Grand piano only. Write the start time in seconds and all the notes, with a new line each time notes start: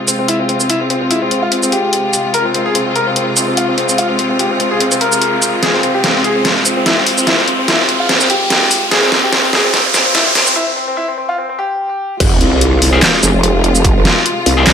0.08 C4
0.19 C4
0.28 E4
0.40 C4
0.49 C4
0.60 C4
0.70 E4
0.81 C4
0.90 C4
1.01 C4
1.11 E4
1.22 C4
1.31 C4
1.42 F4
1.52 C4
1.63 C4
1.72 G4
2.34 A#4
2.45 C4
2.55 C4
2.66 G#4
2.75 C4
2.86 C4
2.96 A#4
3.07 C4
3.16 C4
3.37 C4
3.48 C4
3.57 F4
3.68 C4
3.78 C4
3.89 C4
3.98 F4
4.10 C4
4.19 C4
4.30 C4
4.40 G4
4.51 C4
4.60 C4
4.71 G#4
4.81 C4
4.92 C4
5.01 A#4
5.63 G#4
5.74 C4
5.83 C4
5.94 G4
6.04 C4
6.15 C4
6.25 G#4
6.36 C4
6.45 C4
6.66 C4
6.77 C4
6.86 E4
6.97 C4
7.07 C4
7.18 C4
7.27 E4
7.38 C4
7.48 C4
7.59 C4
7.68 E4
7.79 C4
7.89 C4
8.00 F4
8.09 C4
8.20 C4
8.30 G4
8.91 G#4
9.03 C4
9.12 C4
9.23 G4
9.32 C4
9.44 C4
9.53 G#4
9.64 C4
9.74 C4
9.94 C4
10.06 C4
10.15 E4
10.26 C4
10.35 C4
10.47 C4
10.56 E4
10.67 C4
10.76 C4
10.88 C4
10.97 E4
11.08 C4
11.18 C4
11.29 F4
11.38 C4
11.49 C4
11.59 G4